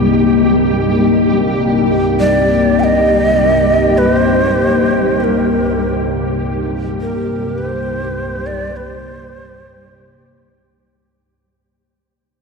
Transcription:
0.00 11.32 C2 medium
0.00 11.32 G2 medium
0.00 11.20 C3 medium
0.00 11.21 G3 medium
0.00 11.20 A#3 medium
0.00 11.20 D#4 medium
0.00 11.21 G4 medium
2.20 2.81 D5 medium
2.80 3.99 D#5 loud
2.80 2.85 G5 medium
3.98 4.15 B4 medium
4.15 5.20 C5 medium
5.20 6.10 A#4 medium
5.20 5.25 C5 medium
7.01 7.60 A#4 medium
7.58 8.48 C5 medium
8.46 8.78 D5 medium
8.76 10.58 C5 medium

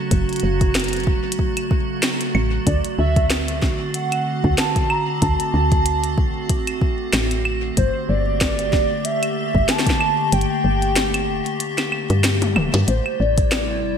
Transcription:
0.00 2.63 C#3 medium
0.00 2.63 F#3 medium
0.00 7.73 A3 medium
0.00 2.63 F#4 medium
0.11 0.25 F#1 loud
0.11 kick loud
0.11 closed hi-hat medium
0.29 closed hi-hat soft
0.33 closed hi-hat soft
0.36 closed hi-hat soft
0.40 1.09 F#1 medium
0.40 closed hi-hat soft
0.61 kick loud
0.61 closed hi-hat soft
0.75 snare loud
0.75 closed hi-hat medium
0.80 closed hi-hat medium
0.84 closed hi-hat soft
0.89 closed hi-hat soft
0.93 closed hi-hat medium
0.97 closed hi-hat soft
1.00 closed hi-hat soft
1.04 1.20 E1 medium
1.04 kick loud
1.04 closed hi-hat soft
1.32 closed hi-hat medium
1.39 kick loud
1.57 closed hi-hat medium
1.57 claves medium
1.71 kick loud
2.03 snare loud
2.03 closed hi-hat medium
2.03 claves soft
2.21 closed hi-hat medium
2.35 2.59 A1 loud
2.35 claves medium
2.67 2.80 D2 loud
2.67 7.73 D3 medium
2.67 7.73 C4 medium
2.67 7.73 F#4 loud
2.67 2.81 D5 loud
2.67 kick loud
2.67 closed hi-hat medium
2.85 closed hi-hat soft
2.99 3.64 D2 loud
2.99 3.58 E5 loud
3.16 kick loud
3.16 closed hi-hat soft
3.30 snare loud
3.30 closed hi-hat medium
3.48 closed hi-hat medium
3.62 3.76 C2 medium
3.62 kick loud
3.62 snare medium
3.94 4.54 F#5 medium
3.94 closed hi-hat medium
4.12 closed hi-hat soft
4.12 claves soft
4.44 4.54 D2 loud
4.44 kick medium
4.58 4.91 A5 loud
4.58 snare loud
4.58 closed hi-hat medium
4.76 kick loud
4.76 closed hi-hat soft
4.90 5.23 A#5 loud
4.90 claves medium
5.22 5.35 D2 loud
5.22 6.18 A5 loud
5.22 kick loud
5.22 closed hi-hat medium
5.40 closed hi-hat soft
5.54 6.19 D2 medium
5.72 kick loud
5.72 closed hi-hat soft
5.86 closed hi-hat medium
6.04 closed hi-hat medium
6.18 6.31 C2 medium
6.18 kick loud
6.50 kick loud
6.50 closed hi-hat medium
6.67 closed hi-hat soft
6.67 claves medium
6.81 kick loud
7.13 7.71 A1 medium
7.13 snare loud
7.13 closed hi-hat medium
7.13 claves soft
7.31 closed hi-hat soft
7.45 claves medium
7.77 7.90 G1 loud
7.77 12.84 D3 medium
7.77 12.84 A3 medium
7.77 12.84 A#3 medium
7.77 12.84 G4 loud
7.77 8.11 C5 medium
7.77 kick medium
7.77 closed hi-hat medium
8.09 8.74 G1 medium
8.09 9.06 D5 loud
8.41 kick loud
8.41 snare loud
8.41 closed hi-hat medium
8.59 closed hi-hat medium
8.73 8.86 F1 medium
8.73 kick loud
8.73 snare medium
9.05 9.70 E5 loud
9.05 closed hi-hat medium
9.23 closed hi-hat medium
9.23 claves medium
9.55 9.65 G1 loud
9.55 kick medium
9.68 10.32 A5 loud
9.68 snare loud
9.68 closed hi-hat medium
9.79 snare medium
9.87 kick loud
9.87 snare medium
9.87 closed hi-hat soft
10.01 claves medium
10.32 10.46 G1 loud
10.32 11.56 G5 loud
10.32 closed hi-hat medium
10.41 closed hi-hat soft
10.64 11.30 G1 medium
10.82 closed hi-hat soft
10.96 snare loud
10.96 closed hi-hat medium
11.14 closed hi-hat medium
11.14 claves medium
11.28 11.42 F1 medium
11.46 closed hi-hat soft
11.60 closed hi-hat medium
11.78 snare medium
11.78 closed hi-hat medium
11.78 claves medium
11.92 claves medium
12.10 12.58 G2 loud
12.10 closed hi-hat soft
12.24 snare loud
12.24 closed hi-hat medium
12.24 claves medium
12.42 closed hi-hat medium
12.42 high tom medium
12.56 12.69 D1 loud
12.56 mid tom medium
12.56 claves medium
12.74 12.84 G2 loud
12.74 snare medium
12.74 closed hi-hat soft
12.88 13.01 A1 loud
12.88 13.98 C3 medium
12.88 13.98 G3 medium
12.88 13.98 A3 medium
12.88 13.98 E4 medium
12.88 13.21 C5 loud
12.88 closed hi-hat medium
13.06 claves medium
13.20 13.85 A1 medium
13.20 13.98 D5 loud
13.38 kick loud
13.38 closed hi-hat medium
13.52 snare loud
13.52 closed hi-hat medium
13.52 claves medium
13.84 13.97 G1 medium

